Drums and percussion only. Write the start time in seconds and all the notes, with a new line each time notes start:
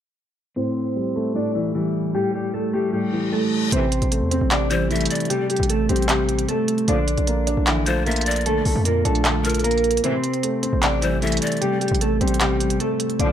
3.72 closed hi-hat
3.92 closed hi-hat
4.02 closed hi-hat
4.12 closed hi-hat
4.31 closed hi-hat
4.51 clap, closed hi-hat
4.71 closed hi-hat
4.91 closed hi-hat
4.96 closed hi-hat
5.01 closed hi-hat
5.05 closed hi-hat
5.11 closed hi-hat
5.15 closed hi-hat
5.20 closed hi-hat
5.25 closed hi-hat
5.30 closed hi-hat
5.50 closed hi-hat, open hi-hat
5.57 closed hi-hat
5.63 closed hi-hat
5.70 closed hi-hat
5.89 closed hi-hat
5.96 closed hi-hat
6.02 closed hi-hat
6.09 clap, closed hi-hat
6.29 closed hi-hat
6.39 closed hi-hat
6.49 closed hi-hat
6.68 closed hi-hat
6.78 closed hi-hat
6.88 closed hi-hat
7.08 closed hi-hat
7.18 closed hi-hat
7.27 closed hi-hat
7.47 closed hi-hat
7.67 clap, closed hi-hat
7.86 closed hi-hat
8.06 closed hi-hat
8.11 closed hi-hat
8.16 closed hi-hat
8.21 closed hi-hat
8.26 closed hi-hat
8.31 closed hi-hat
8.36 closed hi-hat
8.41 closed hi-hat
8.46 closed hi-hat
8.65 open hi-hat
8.85 closed hi-hat
9.05 closed hi-hat
9.15 closed hi-hat
9.25 clap, closed hi-hat
9.45 closed hi-hat
9.49 closed hi-hat
9.54 closed hi-hat
9.59 closed hi-hat
9.64 closed hi-hat
9.71 closed hi-hat
9.78 closed hi-hat
9.84 closed hi-hat
9.91 closed hi-hat
9.97 closed hi-hat
10.04 closed hi-hat
10.24 closed hi-hat
10.33 closed hi-hat
10.43 closed hi-hat
10.63 closed hi-hat
10.83 clap, closed hi-hat
11.02 closed hi-hat
11.22 closed hi-hat
11.27 closed hi-hat
11.32 closed hi-hat
11.37 closed hi-hat
11.42 closed hi-hat
11.47 closed hi-hat
11.52 closed hi-hat
11.57 closed hi-hat
11.62 closed hi-hat
11.81 closed hi-hat, open hi-hat
11.88 closed hi-hat
11.95 closed hi-hat
12.01 closed hi-hat
12.21 closed hi-hat
12.28 closed hi-hat
12.34 closed hi-hat
12.41 clap, closed hi-hat
12.60 closed hi-hat
12.70 closed hi-hat
12.80 closed hi-hat
13.00 closed hi-hat
13.10 closed hi-hat
13.20 closed hi-hat